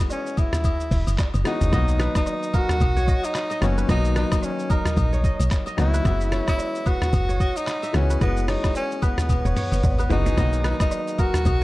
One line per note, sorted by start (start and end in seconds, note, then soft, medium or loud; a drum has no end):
0.00 1.44 E3 medium
0.00 1.45 G#3 medium
0.00 1.46 B3 medium
0.00 1.46 C#4 medium
0.00 1.47 F#4 medium
0.10 0.40 C#4 medium
0.10 low woodblock medium
0.10 shaker medium
0.26 shaker soft
0.37 1.19 E4 loud
0.37 kick loud
0.37 high agogo medium
0.37 shaker medium
0.53 cross-stick loud
0.53 mid tom loud
0.53 shaker loud
0.64 kick medium
0.64 high agogo loud
0.64 shaker medium
0.80 shaker soft
0.91 1.05 E1 medium
0.91 kick medium
0.91 open hi-hat medium
0.91 shaker medium
1.07 1.17 F#1 medium
1.07 high agogo medium
1.07 shaker loud
1.18 kick medium
1.18 cross-stick medium
1.18 clap loud
1.18 low woodblock medium
1.18 shaker medium
1.34 1.44 F#1 loud
1.34 high agogo medium
1.34 shaker soft
1.44 1.71 E3 medium
1.44 1.71 G#3 medium
1.44 1.71 B3 medium
1.44 1.72 C#4 medium
1.44 2.12 D#4 loud
1.44 1.72 F#4 medium
1.44 cross-stick loud
1.44 shaker medium
1.61 1.71 F#1 medium
1.61 mid tom loud
1.61 shaker medium
1.71 2.09 B1 loud
1.71 2.74 D#3 medium
1.71 2.75 F#3 medium
1.71 2.75 A#3 medium
1.71 2.75 B3 medium
1.71 2.76 F#4 medium
1.71 2.80 D#5 loud
1.71 kick loud
1.71 cross-stick medium
1.71 high agogo medium
1.71 shaker medium
1.88 shaker medium
2.00 2.60 B4 medium
2.00 cross-stick loud
2.00 shaker medium
2.15 2.57 D#4 loud
2.15 kick loud
2.15 cross-stick loud
2.15 high agogo medium
2.15 shaker loud
2.26 low woodblock medium
2.26 shaker medium
2.43 shaker soft
2.54 3.26 F#4 loud
2.54 3.84 A#4 medium
2.54 kick loud
2.54 high agogo medium
2.54 shaker medium
2.69 cross-stick loud
2.69 mid tom loud
2.69 shaker loud
2.80 3.17 B1 loud
2.80 kick medium
2.80 high agogo loud
2.80 shaker medium
2.97 4.11 C#5 medium
2.97 shaker soft
3.08 3.50 D#5 medium
3.08 kick medium
3.08 shaker medium
3.23 3.63 D#4 loud
3.23 high agogo medium
3.23 shaker loud
3.35 cross-stick medium
3.35 clap medium
3.35 shaker medium
3.50 3.89 D#5 medium
3.50 high agogo medium
3.50 shaker medium
3.61 3.85 F#1 medium
3.61 3.86 D#3 medium
3.61 3.87 F#3 medium
3.61 3.88 A#3 medium
3.61 3.88 B3 medium
3.61 3.88 C#4 medium
3.61 3.88 F#4 medium
3.61 cross-stick loud
3.61 shaker medium
3.78 4.16 B4 medium
3.78 shaker medium
3.88 4.25 B1 loud
3.88 4.91 D#3 medium
3.88 4.91 F#3 medium
3.88 4.91 A#3 medium
3.88 4.92 B3 medium
3.88 4.15 D#4 loud
3.88 4.92 F#4 medium
3.88 4.96 D#5 medium
3.88 kick loud
3.88 cross-stick medium
3.88 high agogo medium
3.88 shaker medium
4.04 shaker medium
4.16 4.46 D#4 medium
4.16 4.76 B4 medium
4.16 cross-stick loud
4.16 shaker medium
4.32 kick loud
4.32 cross-stick loud
4.32 high agogo medium
4.32 shaker loud
4.42 4.73 C#4 medium
4.42 low woodblock medium
4.42 shaker medium
4.59 shaker soft
4.70 5.52 D#4 medium
4.70 6.00 A#4 medium
4.70 kick loud
4.70 high agogo medium
4.70 shaker medium
4.85 cross-stick loud
4.85 mid tom medium
4.85 shaker loud
4.97 5.34 A#1 loud
4.97 kick medium
4.97 high agogo loud
4.97 shaker medium
5.13 6.28 C#5 medium
5.13 shaker soft
5.24 5.66 D#5 medium
5.24 kick medium
5.24 shaker medium
5.40 5.49 B1 medium
5.40 high agogo medium
5.40 shaker loud
5.51 kick loud
5.51 cross-stick loud
5.51 clap loud
5.51 shaker medium
5.66 6.11 D#5 medium
5.66 high agogo medium
5.66 shaker soft
5.77 6.01 C#2 medium
5.77 6.03 D#3 medium
5.77 6.03 F#3 medium
5.77 6.04 A#3 medium
5.77 6.04 B3 medium
5.77 6.44 E4 loud
5.77 6.04 F#4 medium
5.77 cross-stick medium
5.77 shaker medium
5.94 6.86 B4 medium
5.94 shaker medium
6.04 6.42 F#1 loud
6.04 7.07 E3 medium
6.04 7.07 G#3 medium
6.04 7.08 B3 medium
6.04 7.08 C#4 medium
6.04 7.08 F#4 medium
6.04 7.08 E5 loud
6.04 kick loud
6.04 cross-stick medium
6.04 high agogo medium
6.04 shaker medium
6.20 shaker medium
6.32 7.28 C#5 medium
6.32 cross-stick loud
6.32 shaker medium
6.48 6.89 E4 loud
6.48 kick loud
6.48 cross-stick loud
6.48 high agogo medium
6.48 shaker loud
6.58 low woodblock medium
6.58 shaker medium
6.75 shaker soft
6.86 7.58 F#4 loud
6.86 8.09 B4 medium
6.86 kick loud
6.86 high agogo medium
6.86 shaker medium
7.02 cross-stick loud
7.02 mid tom loud
7.02 shaker loud
7.13 7.50 F#1 loud
7.13 kick medium
7.13 high agogo medium
7.13 shaker medium
7.29 8.44 C#5 medium
7.29 shaker medium
7.40 7.89 D#5 medium
7.40 kick medium
7.40 shaker medium
7.56 7.97 D#4 loud
7.56 high agogo medium
7.56 shaker loud
7.67 cross-stick medium
7.67 clap medium
7.67 shaker medium
7.82 8.27 E5 medium
7.82 high agogo medium
7.82 shaker medium
7.93 8.17 C#2 loud
7.93 8.18 E3 medium
7.93 8.19 G#3 medium
7.93 8.20 B3 medium
7.93 8.20 C#4 medium
7.93 8.22 C#4 loud
7.93 8.20 F#4 medium
7.93 cross-stick medium
7.93 shaker medium
8.10 9.02 B4 medium
8.10 shaker medium
8.20 8.58 F#1 loud
8.20 9.23 E3 medium
8.20 9.23 G#3 medium
8.20 9.24 B3 medium
8.20 8.51 B3 loud
8.20 9.24 C#4 medium
8.20 9.24 F#4 medium
8.20 9.28 D#5 loud
8.20 kick loud
8.20 cross-stick medium
8.20 high agogo medium
8.20 shaker medium
8.37 shaker medium
8.48 8.76 D#4 loud
8.48 9.45 C#5 medium
8.48 cross-stick loud
8.48 open hi-hat medium
8.48 shaker medium
8.64 kick loud
8.64 cross-stick loud
8.64 high agogo medium
8.64 shaker loud
8.75 9.05 C#4 loud
8.75 low woodblock medium
8.75 shaker medium
8.91 shaker soft
9.02 10.11 B3 medium
9.02 9.99 B4 medium
9.02 kick loud
9.02 high agogo medium
9.02 shaker medium
9.18 cross-stick loud
9.18 mid tom loud
9.18 shaker loud
9.29 kick medium
9.29 high tom medium
9.29 high agogo medium
9.29 shaker medium
9.45 9.55 E1 medium
9.45 9.56 C#5 medium
9.45 shaker soft
9.56 10.71 C#5 medium
9.56 open hi-hat medium
9.56 mid tom medium
9.56 shaker medium
9.72 9.82 F#1 medium
9.72 mid tom medium
9.72 high agogo medium
9.72 shaker loud
9.83 10.07 G#1 medium
9.83 kick loud
9.83 mid tom loud
9.83 low woodblock medium
9.83 shaker medium
9.98 10.64 B4 medium
9.98 high agogo medium
9.98 shaker medium
10.09 10.34 F#1 medium
10.09 10.36 E3 medium
10.09 10.36 G#3 medium
10.09 10.36 B3 medium
10.09 10.37 C#4 medium
10.09 10.77 D#4 loud
10.09 10.37 F#4 loud
10.09 floor tom loud
10.09 shaker medium
10.26 11.63 G#4 medium
10.26 floor tom loud
10.26 shaker medium
10.36 10.74 B1 loud
10.36 11.39 D#3 medium
10.36 11.40 F#3 medium
10.36 11.40 A#3 medium
10.36 11.40 B3 medium
10.36 11.41 F#4 medium
10.36 11.45 D#5 loud
10.36 kick loud
10.36 cross-stick medium
10.36 high agogo medium
10.36 shaker medium
10.53 shaker medium
10.64 11.25 B4 medium
10.64 cross-stick loud
10.64 shaker medium
10.80 11.21 D#4 loud
10.80 kick loud
10.80 cross-stick loud
10.80 high agogo medium
10.80 shaker loud
10.91 low woodblock medium
10.91 shaker medium
11.08 shaker soft
11.18 11.64 F#4 loud
11.18 11.64 A#4 medium
11.18 kick loud
11.18 high agogo medium
11.18 shaker medium
11.34 cross-stick loud
11.34 mid tom loud
11.34 shaker loud
11.45 11.64 B1 loud
11.45 kick medium
11.45 high agogo loud
11.45 shaker medium